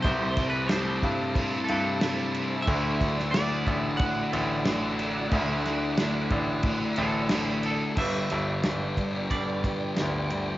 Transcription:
Already playing: string machine C5 A5 E6
0.02 grand piano C2, clean electric guitar C3 E3 G3 A3 E4 G4 C5, distorted electric guitar C3 G3, kick, crash
0.06 distorted electric guitar C4
0.37 clean electric guitar G3 A3 E4 G4, kick, snare, crash
0.50 clean electric guitar B4
0.67 distorted electric guitar C3 G3, clean electric guitar A3 C5, snare, crash
0.71 clean electric guitar G3 E4 G4, distorted electric guitar C4
1.02 grand piano G2, clean electric guitar G3 A3 E4 G4, kick, crash
1.35 distorted electric guitar C3 G3 C4, kick, crash
1.64 clean electric guitar A4
1.68 grand piano G2, clean electric guitar G3 A3 E4 G4, crash
2.01 distorted electric guitar C3 G3 C4, clean electric guitar G3 A3 E4 G4, snare, crash
2.35 crash
2.62 clean electric guitar E5
2.66 grand piano D2, distorted electric guitar D3 A3 D4, clean electric guitar D3 A3 D4 E4 F#4, string machine D5 F#5, kick, crash
2.99 clean electric guitar D4 E4 F#4, kick, snare, crash
3.19 snare
3.31 distorted electric guitar D3, clean electric guitar A3 D4 F#4 D5, snare, crash
3.35 distorted electric guitar A3 D4, clean electric guitar E4
3.65 grand piano A1, clean electric guitar D4 E4 F#4, kick, crash
3.97 distorted electric guitar D3 A3, clean electric guitar F#5, kick, crash
4.01 distorted electric guitar D4
4.30 grand piano A1, clean electric guitar D4 E4 F#4, crash
4.65 distorted electric guitar D3 A3 D4, clean electric guitar A3 D4 E4 F#4, snare, crash
4.99 crash
5.30 grand piano D2, distorted electric guitar D3 A3 D4, clean electric guitar D3 A3 D4 E4 F#4, kick, crash
5.65 clean electric guitar D4 E4 F#4, snare, crash
5.97 distorted electric guitar D3 A3 D4, clean electric guitar A3 D4 E4 F#4, snare, crash
6.30 grand piano A1, clean electric guitar D4 E4 F#4, kick, crash
6.63 distorted electric guitar D3 A3 D4, kick, crash
6.96 grand piano A1, clean electric guitar D4 E4 F#4 A4, crash
7.29 distorted electric guitar D3 A3 D4, clean electric guitar A3 D4 E4 F#4, snare, crash
7.50 clean electric guitar G4
7.63 clean electric guitar A4, crash
7.95 grand piano G1, distorted electric guitar G2 D3 G3, clean electric guitar G3 B3 D4 E5, string machine D5 G5 D6, kick, crash
8.00 clean electric guitar B4
8.30 grand piano G1, distorted electric guitar D3 G3, ride
8.63 grand piano G1, distorted electric guitar G2 D3 G3, snare, ride
8.97 distorted electric guitar G3, kick, ride
9.01 distorted electric guitar D3
9.30 distorted electric guitar G2 D3 G3, clean electric guitar G3 B3 D4 B4 D5, kick, ride
9.64 distorted electric guitar D3 G3, kick, ride
9.96 grand piano D2, distorted electric guitar G2 D3 G3, snare, ride
10.30 distorted electric guitar D3 G3, ride

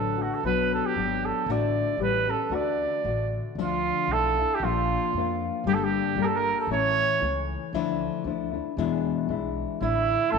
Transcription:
Already playing: upright bass A1, nylon-string guitar D3 F#3 A3 D4 F#4, trumpet A4
0.18 nylon-string guitar A3 D4 F#4
0.22 trumpet F#4
0.34 trumpet A4
0.43 upright bass B1, nylon-string guitar B2 F#3 B3 D4 F#4, trumpet B4
0.74 trumpet A4
0.86 trumpet G4
0.95 upright bass G#1, nylon-string guitar F#3 B3 D4 F#4
1.26 trumpet A4
1.46 upright bass A1, nylon-string guitar A2 D3 A3 D4
1.50 nylon-string guitar F#4, trumpet D5
1.97 upright bass A1, nylon-string guitar E3 G3 C#4 G4
2.02 trumpet B4
2.27 nylon-string guitar G3 C#4 G4, trumpet A4
2.50 upright bass D2, nylon-string guitar D3 A3 D4 F#4
2.54 trumpet D5
3.04 upright bass A1, nylon-string guitar D3 A3 D4 F#4
3.55 upright bass D2, nylon-string guitar D3 F3 A3 D4, trumpet F4
4.08 upright bass B1, nylon-string guitar A3
4.12 nylon-string guitar F3 D4 E4, trumpet A4
4.39 nylon-string guitar A3 D4 E4
4.55 trumpet G4
4.60 upright bass A#1, nylon-string guitar A#2 F3 A#3 D4 F4, trumpet F4
5.14 upright bass F2, nylon-string guitar F3 A#3 D4
5.19 nylon-string guitar F4
5.64 upright bass G1, nylon-string guitar G2 D3 G3 A#3 D4 A4, trumpet G4
5.74 trumpet A4
5.84 trumpet G4
6.15 upright bass G1, nylon-string guitar G3 A#3 D4 A4
6.22 trumpet A4 A#4
6.35 trumpet A#4
6.60 trumpet A4
6.67 upright bass A1, nylon-string guitar A2 E3
6.71 nylon-string guitar A3 C#4 A4, trumpet C#5
7.21 upright bass C#2, nylon-string guitar E3 A3 C#4 A4
7.73 upright bass D2, nylon-string guitar D3 F3 A3 D4 E4
8.24 upright bass D2, nylon-string guitar F3 A3 D4 E4
8.51 nylon-string guitar A3 D4 E4
8.77 upright bass E2, nylon-string guitar E2 B2 E3 G#3 D4 E4
9.29 upright bass B1, nylon-string guitar E3 G#3 D4 E4
9.81 upright bass A1, nylon-string guitar A2 D3 A3 D4 E4, trumpet E4
10.31 upright bass A1, nylon-string guitar E3 A3 C#4 E4, trumpet A4

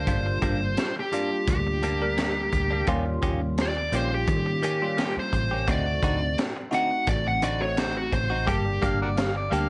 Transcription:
Already playing: clean electric guitar G3 A#3 D4, lead electric guitar C5
0.06 fingered electric bass G1, tine electric piano G3 A#3 D4 F4, kick, closed hi-hat
0.26 muted clean electric guitar stroke
0.42 fingered electric bass G1, clean electric guitar G2 G3 A#3 D4, kick, closed hi-hat
0.61 muted clean electric guitar stroke
0.77 snare, closed hi-hat
0.96 lead electric guitar G4, muted clean electric guitar stroke
1.12 clean electric guitar G2 G3 A#3 D4, tine electric piano G3 A#3 D4 F4, closed hi-hat
1.31 muted clean electric guitar stroke
1.48 fingered electric bass D2, lead electric guitar G4, muted clean electric guitar stroke, kick, closed hi-hat
1.67 muted clean electric guitar stroke
1.83 clean electric guitar G2 G3 A#3 D4, closed hi-hat
2.02 tine electric piano G3 A#3 D4 A#4
2.17 clean electric guitar G2 G3 A#3 D4, snare, closed hi-hat
2.36 muted clean electric guitar stroke
2.52 fingered electric bass D2, muted clean electric guitar stroke, kick, closed hi-hat
2.70 clean electric guitar G3 A#3 D4
2.87 fingered electric bass D#2, clean electric guitar D#3 A#3 C#4 G4, tine electric piano G3 A#3 C#4 F4, kick, closed hi-hat
3.06 muted clean electric guitar stroke
3.22 fingered electric bass D#2, clean electric guitar D#3 A#3 C#4 G4, kick, closed hi-hat
3.42 muted clean electric guitar stroke
3.58 lead electric guitar D5, snare, closed hi-hat
3.77 muted clean electric guitar stroke
3.92 fingered electric bass A#1, clean electric guitar D#3 A#3 C#4 G4, tine electric piano G3 A#3 C#4 F4, lead electric guitar C5, closed hi-hat
4.12 lead electric guitar G4, muted clean electric guitar stroke
4.27 fingered electric bass D#3, muted clean electric guitar stroke, kick, closed hi-hat
4.46 muted clean electric guitar stroke
4.63 clean electric guitar D#3 A#3 C#4 G4, closed hi-hat
4.82 tine electric piano G3 A#3 C#4 F4
4.97 clean electric guitar D#3 A#3 C#4 G4, snare, closed hi-hat
5.17 lead electric guitar C5, muted fingered electric bass stroke
5.33 fingered electric bass A1, muted clean electric guitar stroke, kick, closed hi-hat
5.51 clean electric guitar A#3 C#4 G4
5.67 fingered electric bass D2, clean electric guitar D3 C4 D#4 F#4, tine electric piano A3 C4 D#4 F#4, lead electric guitar D5, kick, closed hi-hat
5.86 muted clean electric guitar stroke
6.03 fingered electric bass D2, clean electric guitar D3 C4 D#4 F#4, kick, closed hi-hat
6.22 muted clean electric guitar stroke
6.38 snare, closed hi-hat
6.57 muted clean electric guitar stroke
6.71 clean electric guitar D3 C4 D#4 F#4, tine electric piano A3 C4 D#4 F#4, lead electric guitar F#5, closed hi-hat
6.91 muted clean electric guitar stroke
7.07 fingered electric bass A1, lead electric guitar D5, muted clean electric guitar stroke, kick, closed hi-hat
7.27 lead electric guitar F#5, muted clean electric guitar stroke
7.42 clean electric guitar D3 C4 D#4 F#4, lead electric guitar D5, closed hi-hat
7.61 tine electric piano A3 C4 D#4 F#4, lead electric guitar C#5
7.77 clean electric guitar D3 C4 D#4 F#4, lead electric guitar C5, snare, closed hi-hat
7.95 lead electric guitar F#4, muted clean electric guitar stroke
8.12 fingered electric bass A1, lead electric guitar C5, muted clean electric guitar stroke, kick, closed hi-hat
8.30 clean electric guitar C4 D#4 F#4
8.46 fingered electric bass G1, tine electric piano G3 A#3 D4 G4, clean electric guitar G3 A#3 D4 G4, lead electric guitar G4, kick, closed hi-hat
8.65 muted clean electric guitar stroke
8.82 fingered electric bass G1, clean electric guitar G3 A#3 D4 G4, harmonica F5, kick, closed hi-hat
9.00 harmonica F#4 A#4 D5, muted clean electric guitar stroke
9.17 harmonica F5, snare, closed hi-hat
9.35 harmonica D5, muted clean electric guitar stroke
9.51 fingered electric bass D2, clean electric guitar G3 A#3 D4 G4, tine electric piano G3 A#3 D4 G4, harmonica F5, closed hi-hat

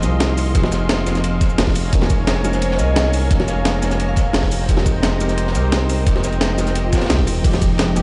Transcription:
Already playing: tine electric piano A#3 C4 D#4 G#4, analog synth pad D#5 F5 C6
0.00 analog synth bass C2, tine electric piano F3 A#3 C4, snare, closed hi-hat, ride, shaker
0.04 tine electric piano D#4 G#4
0.20 snare, closed hi-hat, ride, high bongo
0.38 open hi-hat, ride, shaker
0.53 analog synth bass F1, tine electric piano F3 A#3 C4 D#4, kick, closed hi-hat, ride
0.57 tine electric piano G#4
0.64 snare, high bongo
0.72 snare, closed hi-hat, ride, shaker
0.89 snare, closed hi-hat, ride
1.05 analog synth bass F1, tine electric piano F3 A#3 C4 D#4, snare, closed hi-hat, ride, shaker
1.09 tine electric piano G#4
1.15 snare, closed hi-hat, shaker
1.24 closed hi-hat, ride
1.41 kick, snare, closed hi-hat, ride, shaker
1.50 shaker
1.58 analog synth bass F1, snare, closed hi-hat, open hi-hat, high bongo
1.67 kick, snare
1.76 analog synth pad C#5 G#5 A#5, open hi-hat, ride, shaker
1.91 analog synth bass F1, tine electric piano G#3 A#3 C#4 D#4, kick, closed hi-hat, ride
1.95 tine electric piano A#4
2.01 snare, high bongo
2.10 kick, closed hi-hat, ride, shaker
2.27 snare, closed hi-hat, ride
2.36 ride
2.43 analog synth bass F1, tine electric piano G#3 A#3 C#4 D#4 A#4, closed hi-hat, ride, high bongo, shaker
2.53 vibraphone C5, snare, closed hi-hat, shaker
2.62 closed hi-hat, ride
2.71 snare
2.77 analog synth bass C2, tine electric piano G#3 A#3 C#4 D#4, vibraphone D#5, snare, closed hi-hat, ride, shaker
2.81 tine electric piano A#4
2.96 snare, closed hi-hat, ride, high bongo
3.13 open hi-hat, ride, shaker
3.29 analog synth bass F1, tine electric piano G#3 A#3 C#4 D#4, kick, closed hi-hat, ride
3.33 tine electric piano A#4
3.39 snare, high bongo
3.48 vibraphone F5, snare, closed hi-hat, ride, shaker
3.65 snare, closed hi-hat, ride
3.80 analog synth bass F1, tine electric piano G#3 A#3 C#4 D#4, snare, closed hi-hat, ride, shaker
3.85 tine electric piano A#4
3.90 snare, closed hi-hat, shaker
4.00 closed hi-hat, ride
4.08 vibraphone F5
4.16 kick, snare, closed hi-hat, ride, shaker
4.33 analog synth bass F1, snare, closed hi-hat, open hi-hat, high bongo
4.43 kick, snare
4.52 analog synth pad C5 D#5 G5, open hi-hat, ride, shaker
4.67 analog synth bass F1, tine electric piano G#3 C4 D#4 G4, kick, closed hi-hat, ride
4.71 tine electric piano A#4
4.77 snare, high bongo
4.86 kick, closed hi-hat, ride, shaker
5.03 snare, closed hi-hat, ride
5.12 ride
5.19 analog synth bass F1, tine electric piano G#3 C4 D#4 G4 A#4, closed hi-hat, ride, shaker
5.29 snare, closed hi-hat, shaker
5.37 closed hi-hat, ride
5.47 snare
5.53 analog synth bass C2, tine electric piano G#3 C4 D#4 G4, snare, closed hi-hat, ride, shaker
5.57 tine electric piano A#4
5.72 snare, closed hi-hat, ride, high bongo
5.89 open hi-hat, ride, shaker
6.04 analog synth bass F1, tine electric piano G#3 C4 D#4 G4, kick, closed hi-hat, ride
6.09 tine electric piano A#4
6.15 snare, high bongo
6.24 snare, closed hi-hat, ride, shaker
6.33 closed hi-hat
6.41 snare, closed hi-hat, ride
6.56 analog synth bass F1, tine electric piano G#3 C4 D#4 G4, snare, closed hi-hat, ride, high bongo, shaker
6.61 tine electric piano A#4
6.67 snare, closed hi-hat, shaker
6.75 closed hi-hat, ride, swell
6.92 analog synth bass F1, kick, snare, closed hi-hat, ride, shaker
6.97 snare, ride
7.02 snare, closed hi-hat, ride
7.06 snare, open hi-hat, ride
7.10 analog synth bass C2, snare, closed hi-hat, high bongo
7.18 kick, snare
7.27 analog synth bass D#1, open hi-hat, ride, shaker
7.42 analog synth bass F1, tine electric piano F3 G#3 A#3 D#4, analog synth pad D#5, kick, closed hi-hat, crash, ride
7.46 tine electric piano G4
7.53 snare, high bongo
7.62 kick, closed hi-hat, ride, shaker
7.78 snare, closed hi-hat, ride
7.88 ride
7.95 analog synth bass F1, tine electric piano F3 G#3 A#3 D#4 G4, closed hi-hat, ride, high bongo, shaker

